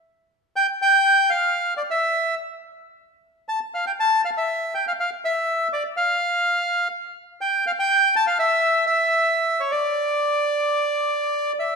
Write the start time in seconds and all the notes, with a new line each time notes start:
0.56 G5
0.82 G5
1.30 F5
1.77 D5
1.91 E5
3.49 A5
3.74 F5
3.87 G5
4.00 A5
4.25 F5
4.38 E5
4.75 G5
4.88 F5
5.00 F5
5.25 E5
5.73 D5
5.97 F5
7.41 G5
7.67 F5
7.79 G5
8.16 A5
8.27 F5
8.39 E5
8.86 E5
9.60 C#5
9.71 D5
11.59 E5